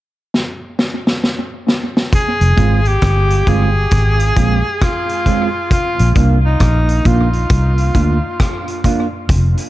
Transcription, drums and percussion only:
0.34 snare medium
0.79 snare medium
1.07 snare medium
1.24 snare medium
1.68 snare medium
1.97 snare loud
2.13 kick loud
2.13 closed hi-hat medium
2.41 closed hi-hat medium
2.57 kick medium
2.57 closed hi-hat medium
2.85 closed hi-hat soft
3.02 kick loud
3.02 cross-stick loud
3.02 closed hi-hat medium
3.30 closed hi-hat soft
3.47 kick medium
3.47 closed hi-hat medium
3.91 kick loud
3.91 closed hi-hat medium
4.19 closed hi-hat soft
4.36 kick medium
4.36 closed hi-hat medium
4.81 kick loud
4.81 cross-stick loud
4.81 closed hi-hat medium
5.09 closed hi-hat soft
5.26 kick medium
5.26 closed hi-hat medium
5.71 kick loud
5.71 closed hi-hat medium
5.99 closed hi-hat medium
6.15 kick medium
6.15 closed hi-hat medium
6.60 kick loud
6.60 cross-stick loud
6.60 closed hi-hat medium
6.89 closed hi-hat soft
7.05 kick medium
7.05 closed hi-hat medium
7.33 closed hi-hat soft
7.50 kick loud
7.50 closed hi-hat medium
7.78 closed hi-hat soft
7.94 kick medium
7.94 closed hi-hat medium
8.39 kick loud
8.39 cross-stick loud
8.39 closed hi-hat medium
8.68 closed hi-hat soft
8.84 kick medium
8.84 closed hi-hat medium
9.29 kick loud
9.29 closed hi-hat loud
9.57 closed hi-hat medium

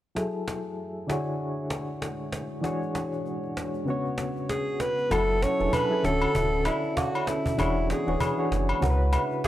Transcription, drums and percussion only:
0.16 cajon slap medium
0.48 cajon slap medium
1.10 cajon slap medium
1.70 cajon slap medium
2.02 cajon slap medium
2.33 cajon slap medium
2.64 cajon slap medium
2.82 cajon slap soft
2.95 cajon slap medium
3.12 cajon slap soft
3.26 cajon slap soft
3.44 cajon slap soft
3.57 cajon slap medium
3.74 cajon slap soft
3.88 cajon slap soft
4.06 cajon slap soft
4.18 cajon slap medium
4.36 cajon slap soft
4.49 cajon slap loud
4.67 cajon slap soft
4.80 cajon slap medium
4.98 cajon slap soft
5.11 cajon bass loud
5.11 cajon slap medium
5.11 high agogo medium
5.29 cajon slap soft
5.42 cajon slap loud
5.60 cajon slap medium
5.73 cajon bass loud
5.73 high agogo medium
6.04 cajon slap medium
6.22 cajon slap soft
6.22 high agogo medium
6.35 cajon bass loud
6.53 cajon slap soft
6.65 cajon slap medium
6.65 high agogo medium
6.84 cajon slap soft
6.97 cajon bass medium
6.97 cajon slap loud
6.97 low woodblock medium
7.15 cajon slap soft
7.15 high agogo medium
7.27 cajon slap loud
7.46 cajon bass loud
7.59 cajon bass loud
7.59 cajon slap medium
7.59 high agogo medium
7.77 cajon slap soft
7.90 cajon slap loud
8.07 cajon slap medium
8.20 cajon bass loud
8.20 high agogo medium
8.38 cajon slap soft
8.52 cajon slap medium
8.69 cajon slap soft
8.69 high agogo medium
8.82 cajon bass loud
9.00 cajon slap soft
9.13 cajon slap loud
9.13 high agogo medium
9.31 cajon slap soft
9.44 cajon bass medium
9.44 cajon slap loud
9.44 low woodblock medium

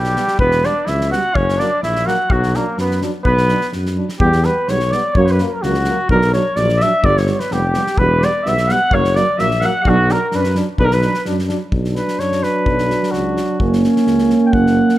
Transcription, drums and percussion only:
0.04 snare soft
0.16 snare soft
0.28 snare soft
0.39 kick medium
0.51 snare soft
0.64 snare soft
0.87 snare soft
1.01 snare soft
1.13 snare soft
1.35 kick medium
1.49 snare soft
1.60 snare soft
1.83 snare soft
1.96 snare soft
2.08 snare soft
2.30 kick loud
2.43 snare soft
2.54 snare soft
2.78 snare soft
2.91 snare soft
3.02 snare soft
3.25 kick medium
3.38 snare soft
3.49 snare soft
3.61 snare soft
3.73 snare soft
3.86 snare soft
4.09 snare soft
4.20 kick medium
4.32 snare soft
4.43 snare soft
4.68 snare soft
4.80 snare soft
4.92 snare soft
5.15 kick loud
5.27 snare soft
5.39 snare soft
5.63 snare soft
5.74 snare soft
5.84 snare soft
6.09 kick medium
6.22 snare soft
6.33 snare soft
6.56 snare soft
6.69 snare soft
6.81 snare soft
7.04 kick medium
7.17 snare soft
7.27 snare soft
7.40 snare soft
7.51 snare soft
7.74 snare soft
7.87 snare soft
7.98 kick medium
8.22 snare soft
8.46 snare soft
8.58 snare soft
8.69 snare soft
8.91 kick medium
9.04 snare soft
9.16 snare soft
9.39 snare soft
9.51 snare soft
9.61 snare soft
9.85 kick medium
10.09 snare soft
10.32 snare soft
10.44 snare soft
10.55 snare soft
10.78 kick medium
10.91 snare soft
11.02 snare soft
11.14 snare soft
11.25 snare soft
11.39 snare soft
11.49 snare soft
11.72 kick medium
11.84 snare soft
11.96 snare soft
12.08 snare soft
12.20 snare soft
12.32 snare soft
12.43 snare soft
12.66 kick medium
12.78 snare soft
12.90 snare soft
13.03 snare soft
13.13 snare soft
13.37 snare soft
13.60 kick medium
13.73 snare soft
13.84 snare soft
13.96 snare soft
14.07 snare soft
14.18 snare soft
14.30 snare soft
14.53 kick medium
14.67 snare soft
14.89 snare soft

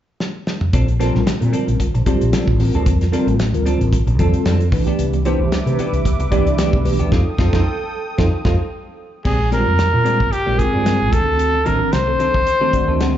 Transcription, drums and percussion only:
0.20 snare medium
0.47 snare medium
0.61 mid tom medium
0.73 kick loud
0.73 closed hi-hat medium
0.88 closed hi-hat soft
1.01 snare soft
1.01 closed hi-hat medium
1.15 snare soft
1.27 snare loud
1.27 closed hi-hat medium
1.42 closed hi-hat soft
1.53 closed hi-hat medium
1.68 closed hi-hat soft
1.80 kick medium
1.80 closed hi-hat medium
1.95 closed hi-hat soft
2.06 kick medium
2.06 closed hi-hat medium
2.21 closed hi-hat soft
2.33 snare loud
2.33 closed hi-hat medium
2.48 kick medium
2.60 open hi-hat medium
2.74 closed hi-hat soft
2.86 kick loud
2.86 closed hi-hat medium
3.01 snare soft
3.01 closed hi-hat soft
3.13 snare soft
3.13 closed hi-hat medium
3.28 closed hi-hat soft
3.39 snare loud
3.39 closed hi-hat medium
3.54 closed hi-hat soft
3.66 closed hi-hat medium
3.81 closed hi-hat soft
3.93 kick medium
3.93 closed hi-hat medium
4.07 closed hi-hat soft
4.19 kick medium
4.19 closed hi-hat medium
4.34 closed hi-hat soft
4.45 snare loud
4.45 closed hi-hat medium
4.60 closed hi-hat soft
4.72 kick loud
4.72 open hi-hat medium
4.87 closed hi-hat soft
4.99 closed hi-hat medium
5.13 closed hi-hat soft
5.25 closed hi-hat medium
5.52 snare loud
5.52 closed hi-hat medium
5.67 closed hi-hat soft
5.79 closed hi-hat medium
5.93 closed hi-hat soft
6.05 kick medium
6.05 closed hi-hat medium
6.20 closed hi-hat soft
6.32 kick medium
6.32 closed hi-hat medium
6.47 closed hi-hat soft
6.58 snare loud
6.58 closed hi-hat medium
6.73 kick medium
6.85 open hi-hat medium
7.00 closed hi-hat soft
7.12 kick medium
7.12 snare medium
7.38 kick medium
7.38 snare medium
7.53 kick loud
7.53 snare medium
8.18 kick medium
8.18 snare medium
8.45 kick medium
8.45 snare medium
9.25 kick medium
9.25 crash medium
9.52 snare soft
9.52 closed hi-hat medium
9.79 snare medium
9.79 closed hi-hat medium
10.06 closed hi-hat medium
10.20 kick medium
10.33 closed hi-hat medium
10.59 kick medium
10.59 closed hi-hat medium
10.86 snare loud
10.86 closed hi-hat medium
11.13 kick loud
11.13 closed hi-hat medium
11.39 closed hi-hat medium
11.66 closed hi-hat medium
11.93 snare loud
11.93 closed hi-hat medium
12.20 closed hi-hat medium
12.34 kick medium
12.47 closed hi-hat medium
12.73 kick medium
12.73 closed hi-hat medium
13.00 snare loud
13.00 closed hi-hat medium

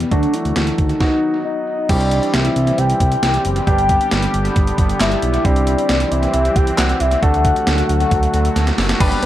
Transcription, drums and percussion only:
0.00 closed hi-hat medium
0.12 kick loud
0.12 closed hi-hat medium
0.23 closed hi-hat soft
0.34 closed hi-hat medium
0.45 closed hi-hat medium
0.56 snare loud
0.56 closed hi-hat medium
0.67 closed hi-hat medium
0.78 kick medium
0.78 closed hi-hat medium
0.89 closed hi-hat soft
1.00 kick loud
1.00 snare medium
1.89 kick loud
1.89 closed hi-hat medium
1.89 crash medium
2.01 closed hi-hat medium
2.11 closed hi-hat medium
2.23 closed hi-hat medium
2.34 snare loud
2.34 closed hi-hat medium
2.45 closed hi-hat medium
2.56 closed hi-hat medium
2.67 closed hi-hat soft
2.78 closed hi-hat medium
2.90 closed hi-hat medium
3.00 kick medium
3.00 closed hi-hat medium
3.12 closed hi-hat medium
3.23 snare loud
3.23 closed hi-hat medium
3.34 closed hi-hat medium
3.45 closed hi-hat medium
3.56 closed hi-hat medium
3.67 kick loud
3.67 closed hi-hat medium
3.78 closed hi-hat medium
3.89 kick medium
3.89 closed hi-hat medium
4.01 closed hi-hat medium
4.11 snare loud
4.11 closed hi-hat medium
4.22 closed hi-hat medium
4.34 closed hi-hat medium
4.45 closed hi-hat soft
4.56 kick medium
4.56 closed hi-hat medium
4.67 closed hi-hat medium
4.78 kick medium
4.78 closed hi-hat medium
4.89 closed hi-hat medium
5.01 snare loud
5.01 clap medium
5.01 closed hi-hat medium
5.12 closed hi-hat medium
5.22 closed hi-hat medium
5.34 closed hi-hat medium
5.45 kick loud
5.45 closed hi-hat medium
5.56 closed hi-hat medium
5.67 closed hi-hat medium
5.79 closed hi-hat medium
5.89 snare loud
5.89 closed hi-hat medium
6.00 closed hi-hat medium
6.12 closed hi-hat medium
6.23 closed hi-hat soft
6.34 closed hi-hat medium
6.45 closed hi-hat medium
6.56 kick medium
6.56 closed hi-hat medium
6.67 closed hi-hat medium
6.78 snare loud
6.78 clap medium
6.78 closed hi-hat medium
6.89 closed hi-hat medium
7.00 closed hi-hat medium
7.11 closed hi-hat medium
7.23 kick loud
7.23 closed hi-hat medium
7.34 closed hi-hat medium
7.45 kick medium
7.45 closed hi-hat medium
7.56 closed hi-hat medium
7.67 snare loud
7.67 closed hi-hat medium
7.78 closed hi-hat medium
7.89 closed hi-hat medium
8.00 closed hi-hat soft
8.11 kick loud
8.11 closed hi-hat medium
8.23 closed hi-hat medium
8.34 closed hi-hat medium
8.45 closed hi-hat medium
8.56 snare medium
8.56 closed hi-hat medium
8.67 snare medium
8.67 closed hi-hat medium
8.78 snare loud
8.78 open hi-hat medium
8.89 snare medium
8.89 closed hi-hat medium
9.00 kick loud
9.00 closed hi-hat medium
9.00 crash loud
9.12 closed hi-hat medium
9.23 closed hi-hat medium

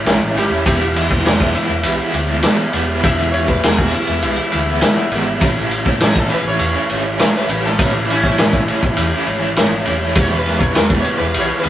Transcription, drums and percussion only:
0.06 snare loud
0.06 ride medium
0.37 snare soft
0.37 ride medium
0.66 kick loud
0.66 ride loud
0.96 ride medium
1.11 kick medium
1.26 snare loud
1.26 ride medium
1.40 kick medium
1.55 ride medium
1.83 ride loud
2.14 ride medium
2.42 snare loud
2.42 ride medium
2.73 ride medium
3.03 kick loud
3.03 ride loud
3.34 ride medium
3.48 kick medium
3.63 snare loud
3.63 ride medium
3.78 kick medium
3.94 ride medium
4.22 ride medium
4.52 ride medium
4.81 snare loud
4.81 ride medium
5.12 snare soft
5.12 ride medium
5.41 kick loud
5.41 ride medium
5.71 ride medium
5.86 kick medium
6.00 snare loud
6.00 ride medium
6.16 kick medium
6.30 ride medium
6.59 ride loud
6.90 ride medium
7.19 snare loud
7.19 ride medium
7.49 ride medium
7.66 snare soft
7.79 kick loud
7.79 ride loud
8.10 ride medium
8.24 kick medium
8.38 snare loud
8.38 ride medium
8.53 kick medium
8.68 ride medium
8.83 kick medium
8.97 ride medium
9.27 ride medium
9.56 snare loud
9.56 ride medium
9.86 ride medium
10.15 kick loud
10.15 ride medium
10.46 snare soft
10.46 ride medium
10.61 kick medium
10.75 snare loud
10.75 ride medium
10.90 kick medium
11.05 ride medium
11.34 ride loud
11.64 ride medium

